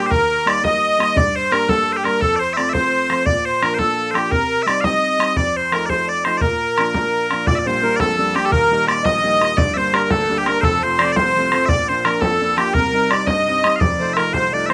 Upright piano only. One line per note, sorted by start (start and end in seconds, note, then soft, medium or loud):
0.00 0.10 G3 medium
0.00 0.11 A#3 medium
0.00 0.11 D4 medium
0.11 1.13 D#2 medium
0.46 0.62 G3 medium
0.46 0.62 A#3 soft
0.46 0.62 D#4 medium
0.63 0.97 G3 soft
0.63 0.98 A#3 medium
0.63 0.98 D#4 medium
0.98 1.15 G3 medium
0.98 1.16 A#3 medium
0.98 1.16 D#4 medium
1.16 2.18 G2 medium
1.52 1.67 G3 medium
1.52 1.68 A#3 soft
1.52 1.68 D4 medium
1.69 2.03 G3 medium
1.69 2.03 A#3 soft
1.69 2.04 D4 medium
2.04 2.21 G3 medium
2.04 2.21 A#3 medium
2.04 2.21 D4 medium
2.21 3.23 F2 medium
2.57 2.72 F3 medium
2.57 2.72 A3 soft
2.57 2.73 C4 medium
2.73 3.08 F3 soft
2.73 3.09 A3 soft
2.73 3.09 C4 medium
3.10 3.26 F3 medium
3.10 3.26 A3 soft
3.10 3.26 C4 medium
3.27 4.28 A#2 medium
3.62 3.77 F3 medium
3.62 3.78 A#3 soft
3.62 3.78 D4 medium
3.79 4.13 F3 soft
3.79 4.13 A#3 soft
3.79 4.13 D4 medium
4.14 4.31 F3 medium
4.14 4.31 A#3 soft
4.14 4.31 D4 medium
4.30 5.33 C3 medium
4.66 4.82 G3 medium
4.66 4.82 C4 soft
4.66 4.83 D#4 medium
4.83 5.18 G3 soft
4.83 5.18 C4 medium
4.83 5.18 D#4 medium
5.19 5.36 G3 soft
5.19 5.36 C4 soft
5.19 5.36 D#4 medium
5.37 6.39 F2 medium
5.72 5.88 F3 medium
5.72 5.89 A3 soft
5.72 5.88 D#4 medium
5.90 6.24 F3 medium
5.90 6.25 A3 soft
5.90 6.24 D#4 medium
6.26 6.42 F3 medium
6.26 6.42 A3 soft
6.26 6.42 D#4 medium
6.42 7.44 A#2 medium
6.78 6.93 F3 medium
6.78 6.94 A#3 soft
6.78 6.94 D4 medium
6.95 7.29 F3 soft
6.95 7.30 A#3 soft
6.95 7.30 D4 medium
7.31 7.47 F3 medium
7.31 7.47 A#3 soft
7.31 7.47 D4 medium
7.47 8.49 A#1 medium
7.47 7.82 A#2 medium
7.66 7.81 G3 medium
7.66 7.81 A#3 soft
7.66 7.82 D4 medium
7.82 8.11 G3 medium
7.82 8.11 A#3 medium
7.82 8.12 D4 medium
7.99 8.34 F2 medium
8.19 8.34 G3 medium
8.19 8.34 A#3 soft
8.19 8.34 D4 medium
8.35 8.49 G3 medium
8.35 8.49 A#3 soft
8.35 8.49 D4 medium
8.52 9.53 D#1 medium
8.52 8.87 D#2 medium
8.71 8.87 G3 medium
8.71 8.87 A#3 soft
8.71 8.87 D#4 medium
8.88 9.17 G3 medium
8.88 9.17 A#3 soft
8.88 9.17 D#4 medium
9.05 9.40 A#1 medium
9.23 9.39 G3 medium
9.23 9.39 A#3 medium
9.23 9.40 D#4 medium
9.40 9.54 G3 soft
9.40 9.54 A#3 medium
9.40 9.55 D#4 medium
9.58 10.59 G1 medium
9.58 9.93 G2 medium
9.77 9.91 G3 medium
9.77 9.92 A#3 soft
9.77 9.92 D4 medium
9.93 10.22 G3 medium
9.93 10.22 A#3 soft
9.93 10.23 D4 medium
10.10 10.45 D2 medium
10.29 10.45 G3 medium
10.29 10.45 A#3 soft
10.29 10.46 D4 medium
10.47 10.60 G3 medium
10.47 10.60 A#3 medium
10.47 10.60 D4 medium
10.64 11.66 F1 medium
10.64 10.99 F2 medium
10.83 10.98 F3 medium
10.83 10.99 A3 soft
10.83 10.99 C4 medium
11.00 11.28 F3 soft
11.00 11.29 A3 medium
11.00 11.29 C4 medium
11.17 11.51 C2 medium
11.36 11.50 F3 medium
11.36 11.51 A3 medium
11.36 11.52 C4 medium
11.52 11.66 F3 medium
11.52 11.66 A3 medium
11.52 11.66 C4 medium
11.70 12.71 A#1 medium
11.70 12.04 A#2 medium
11.88 12.04 F3 soft
11.88 12.04 A#3 soft
11.88 12.05 D4 medium
12.05 12.34 F3 medium
12.05 12.34 A#3 medium
12.05 12.34 D4 medium
12.22 12.57 F2 medium
12.41 12.56 F3 medium
12.41 12.57 A#3 medium
12.41 12.57 D4 medium
12.58 12.71 F3 medium
12.58 12.72 A#3 medium
12.58 12.72 D4 medium
12.74 13.76 C2 medium
12.74 13.09 C3 medium
12.93 13.09 G3 soft
12.93 13.09 C4 soft
12.93 13.10 D#4 medium
13.10 13.39 G3 medium
13.10 13.40 C4 medium
13.10 13.40 D#4 medium
13.28 13.63 G2 medium
13.48 13.63 G3 medium
13.48 13.64 C4 medium
13.48 13.64 D#4 medium
13.65 13.78 G3 medium
13.65 13.78 C4 medium
13.65 13.79 D#4 medium
13.81 14.74 F1 medium
13.81 14.16 F2 medium
13.99 14.15 F3 soft
13.99 14.15 A3 soft
13.99 14.15 D#4 medium
14.16 14.45 F3 medium
14.16 14.45 A3 soft
14.16 14.46 D#4 medium
14.33 14.68 C2 medium
14.52 14.68 F3 medium
14.52 14.68 A3 medium
14.52 14.69 D#4 medium
14.69 14.74 F3 medium
14.69 14.74 A3 medium
14.69 14.74 D#4 medium